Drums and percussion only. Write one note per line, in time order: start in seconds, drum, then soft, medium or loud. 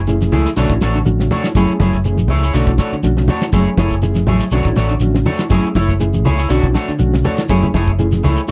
0.07 closed hi-hat medium
0.07 high conga soft
0.07 shekere medium
0.21 snare soft
0.21 closed hi-hat soft
0.21 high conga medium
0.21 shekere medium
0.32 open hi-hat medium
0.32 low conga medium
0.32 shekere soft
0.45 snare soft
0.45 closed hi-hat soft
0.45 shekere medium
0.56 closed hi-hat medium
0.56 high conga soft
0.56 shekere medium
0.69 kick medium
0.69 closed hi-hat soft
0.81 snare medium
0.81 closed hi-hat medium
0.81 shekere medium
0.95 closed hi-hat soft
0.95 shekere soft
1.06 closed hi-hat medium
1.06 high conga medium
1.06 shekere medium
1.20 snare medium
1.31 closed hi-hat medium
1.31 high conga medium
1.31 low conga medium
1.31 shekere soft
1.44 snare medium
1.44 closed hi-hat soft
1.44 shekere medium
1.55 kick medium
1.55 closed hi-hat medium
1.55 shekere medium
1.69 high conga soft
1.80 kick medium
1.80 snare medium
1.80 closed hi-hat soft
1.80 high conga medium
1.93 kick medium
1.93 snare soft
1.93 shekere soft
2.04 closed hi-hat medium
2.04 high conga soft
2.04 shekere medium
2.17 high conga medium
2.17 shekere medium
2.28 open hi-hat medium
2.28 low conga medium
2.28 shekere soft
2.43 closed hi-hat soft
2.43 shekere medium
2.54 closed hi-hat medium
2.54 shekere medium
2.67 kick medium
2.67 closed hi-hat soft
2.78 kick medium
2.78 snare medium
2.78 closed hi-hat soft
2.78 shekere medium
2.92 closed hi-hat soft
2.92 shekere soft
3.03 snare soft
3.03 closed hi-hat medium
3.03 high conga medium
3.03 shekere medium
3.17 snare medium
3.28 closed hi-hat soft
3.28 high conga loud
3.28 low conga medium
3.28 shekere soft
3.42 snare medium
3.42 shekere medium
3.53 kick medium
3.53 closed hi-hat medium
3.53 shekere medium
3.67 high conga soft
3.77 kick medium
3.77 snare medium
3.77 closed hi-hat medium
3.77 high conga medium
3.90 kick medium
3.90 closed hi-hat soft
3.90 shekere soft
4.02 snare soft
4.02 closed hi-hat medium
4.02 high conga soft
4.02 shekere medium
4.15 snare soft
4.15 closed hi-hat soft
4.15 high conga medium
4.15 shekere medium
4.27 open hi-hat medium
4.27 low conga medium
4.27 shekere soft
4.40 closed hi-hat soft
4.40 shekere medium
4.51 closed hi-hat medium
4.51 high conga soft
4.51 shekere medium
4.65 kick medium
4.65 closed hi-hat soft
4.76 snare medium
4.76 closed hi-hat medium
4.76 shekere medium
4.89 closed hi-hat soft
4.89 shekere soft
5.00 snare soft
5.00 closed hi-hat medium
5.00 high conga medium
5.00 shekere medium
5.15 snare medium
5.25 closed hi-hat medium
5.25 high conga loud
5.25 low conga medium
5.25 shekere soft
5.39 snare medium
5.39 closed hi-hat soft
5.39 shekere medium
5.50 kick medium
5.50 closed hi-hat medium
5.50 shekere medium
5.65 high conga soft
5.75 kick medium
5.75 snare medium
5.75 closed hi-hat soft
5.75 high conga loud
5.89 kick medium
5.89 snare soft
5.89 shekere soft
6.00 closed hi-hat medium
6.00 high conga soft
6.00 shekere medium
6.14 high conga medium
6.14 shekere medium
6.25 open hi-hat medium
6.25 low conga medium
6.25 shekere soft
6.39 closed hi-hat soft
6.39 shekere medium
6.50 closed hi-hat medium
6.50 high conga soft
6.50 shekere medium
6.63 kick medium
6.63 closed hi-hat soft
6.75 snare medium
6.75 closed hi-hat medium
6.75 shekere medium
6.89 closed hi-hat soft
6.89 shekere soft
6.99 closed hi-hat medium
6.99 high conga medium
6.99 shekere medium
7.14 snare medium
7.24 closed hi-hat soft
7.24 high conga loud
7.24 low conga medium
7.24 shekere soft
7.38 snare medium
7.38 shekere medium
7.49 kick medium
7.49 closed hi-hat medium
7.49 shekere medium
7.63 high conga soft
7.63 low conga medium
7.74 kick medium
7.74 snare medium
7.74 closed hi-hat soft
7.74 high conga medium
7.88 kick medium
7.88 closed hi-hat soft
7.88 shekere soft
7.99 closed hi-hat medium
7.99 high conga soft
7.99 shekere medium
8.12 snare soft
8.12 closed hi-hat soft
8.12 high conga medium
8.12 shekere medium
8.24 open hi-hat medium
8.24 low conga medium
8.24 shekere soft
8.37 closed hi-hat soft
8.37 shekere medium